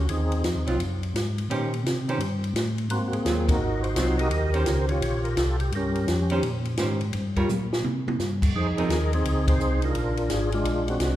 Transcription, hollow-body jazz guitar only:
0, 0, Header, 1, 2, 480
1, 0, Start_track
1, 0, Tempo, 351906
1, 125, Time_signature, 4, 2, 24, 8
1, 15222, End_track
2, 0, Start_track
2, 0, Title_t, "Hollow-body jazz guitar"
2, 0, Program_c, 0, 26
2, 911, Note_on_c, 0, 54, 59
2, 923, Note_on_c, 0, 60, 69
2, 930, Note_on_c, 0, 65, 76
2, 1067, Note_off_c, 0, 54, 0
2, 1073, Note_off_c, 0, 60, 0
2, 1076, Note_off_c, 0, 65, 0
2, 2047, Note_on_c, 0, 51, 66
2, 2053, Note_on_c, 0, 61, 72
2, 2058, Note_on_c, 0, 67, 81
2, 2064, Note_on_c, 0, 72, 65
2, 2324, Note_off_c, 0, 51, 0
2, 2327, Note_off_c, 0, 61, 0
2, 2330, Note_off_c, 0, 67, 0
2, 2333, Note_off_c, 0, 72, 0
2, 2842, Note_on_c, 0, 51, 67
2, 2853, Note_on_c, 0, 61, 68
2, 2857, Note_on_c, 0, 67, 70
2, 2860, Note_on_c, 0, 72, 72
2, 2992, Note_off_c, 0, 51, 0
2, 2997, Note_off_c, 0, 61, 0
2, 2999, Note_off_c, 0, 67, 0
2, 3001, Note_off_c, 0, 72, 0
2, 4454, Note_on_c, 0, 54, 55
2, 4467, Note_on_c, 0, 60, 54
2, 4475, Note_on_c, 0, 65, 61
2, 4728, Note_off_c, 0, 54, 0
2, 4734, Note_off_c, 0, 60, 0
2, 4738, Note_off_c, 0, 65, 0
2, 5421, Note_on_c, 0, 54, 57
2, 5426, Note_on_c, 0, 60, 62
2, 5433, Note_on_c, 0, 65, 61
2, 5692, Note_off_c, 0, 54, 0
2, 5694, Note_off_c, 0, 60, 0
2, 5697, Note_off_c, 0, 65, 0
2, 6204, Note_on_c, 0, 61, 53
2, 6210, Note_on_c, 0, 51, 53
2, 6217, Note_on_c, 0, 67, 59
2, 6223, Note_on_c, 0, 72, 69
2, 6817, Note_off_c, 0, 61, 0
2, 6820, Note_off_c, 0, 51, 0
2, 6824, Note_off_c, 0, 67, 0
2, 6826, Note_off_c, 0, 72, 0
2, 8607, Note_on_c, 0, 51, 70
2, 8611, Note_on_c, 0, 61, 78
2, 8623, Note_on_c, 0, 67, 81
2, 8623, Note_on_c, 0, 72, 79
2, 8756, Note_off_c, 0, 51, 0
2, 8758, Note_off_c, 0, 61, 0
2, 8764, Note_off_c, 0, 67, 0
2, 8764, Note_off_c, 0, 72, 0
2, 9257, Note_on_c, 0, 61, 50
2, 9263, Note_on_c, 0, 51, 51
2, 9267, Note_on_c, 0, 67, 53
2, 9270, Note_on_c, 0, 72, 61
2, 9531, Note_off_c, 0, 61, 0
2, 9534, Note_off_c, 0, 51, 0
2, 9536, Note_off_c, 0, 67, 0
2, 9538, Note_off_c, 0, 72, 0
2, 10050, Note_on_c, 0, 55, 71
2, 10050, Note_on_c, 0, 70, 66
2, 10051, Note_on_c, 0, 73, 76
2, 10052, Note_on_c, 0, 65, 70
2, 10198, Note_off_c, 0, 55, 0
2, 10198, Note_off_c, 0, 70, 0
2, 10199, Note_off_c, 0, 65, 0
2, 10199, Note_off_c, 0, 73, 0
2, 11969, Note_on_c, 0, 53, 60
2, 11975, Note_on_c, 0, 60, 59
2, 11984, Note_on_c, 0, 63, 69
2, 11990, Note_on_c, 0, 68, 65
2, 12118, Note_off_c, 0, 53, 0
2, 12121, Note_off_c, 0, 60, 0
2, 12125, Note_off_c, 0, 63, 0
2, 12128, Note_off_c, 0, 68, 0
2, 15222, End_track
0, 0, End_of_file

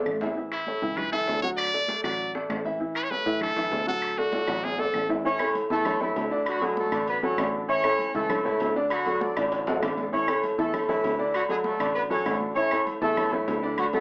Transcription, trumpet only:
0, 0, Header, 1, 2, 480
1, 0, Start_track
1, 0, Key_signature, 3, "major"
1, 0, Tempo, 304878
1, 578, Time_signature, 4, 2, 24, 8
1, 22045, End_track
2, 0, Start_track
2, 0, Title_t, "Trumpet"
2, 0, Program_c, 0, 56
2, 817, Note_on_c, 0, 64, 76
2, 1527, Note_on_c, 0, 71, 89
2, 1551, Note_off_c, 0, 64, 0
2, 1758, Note_off_c, 0, 71, 0
2, 1768, Note_on_c, 0, 69, 96
2, 2216, Note_off_c, 0, 69, 0
2, 2235, Note_on_c, 0, 73, 98
2, 2347, Note_off_c, 0, 73, 0
2, 2475, Note_on_c, 0, 74, 124
2, 3152, Note_off_c, 0, 74, 0
2, 3203, Note_on_c, 0, 74, 97
2, 3654, Note_off_c, 0, 74, 0
2, 4650, Note_on_c, 0, 71, 105
2, 4776, Note_on_c, 0, 73, 93
2, 4800, Note_off_c, 0, 71, 0
2, 4888, Note_on_c, 0, 71, 100
2, 4911, Note_off_c, 0, 73, 0
2, 5374, Note_off_c, 0, 71, 0
2, 5383, Note_on_c, 0, 69, 101
2, 6049, Note_off_c, 0, 69, 0
2, 6108, Note_on_c, 0, 69, 97
2, 6578, Note_on_c, 0, 66, 83
2, 6601, Note_off_c, 0, 69, 0
2, 7302, Note_on_c, 0, 68, 88
2, 7326, Note_off_c, 0, 66, 0
2, 7546, Note_on_c, 0, 69, 79
2, 7570, Note_off_c, 0, 68, 0
2, 8022, Note_off_c, 0, 69, 0
2, 22045, End_track
0, 0, End_of_file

